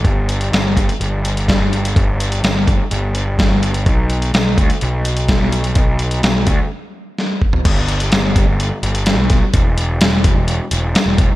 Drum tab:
CC |----------------|----------------|----------------|----------------|
HH |x-xxx-xxx-xxx-xx|x-xxx-x-x-x-x-xx|x-xxx-xxx-xxx-xx|x-xxx-x---------|
SD |----o-------o---|----o-------o---|----o-------o---|----o-------o---|
FT |----------------|----------------|----------------|---------------o|
BD |o-----o-----o---|o-----o-----o---|o-----o-----o---|o-----o-------o-|

CC |x---------------|----------------|
HH |x-xxx-x-x-xxx-x-|x-x-x-x-x-x-x-x-|
SD |----o-------o-o-|----o-------o---|
FT |----------------|----------------|
BD |o-----o-------o-|o-----o-------o-|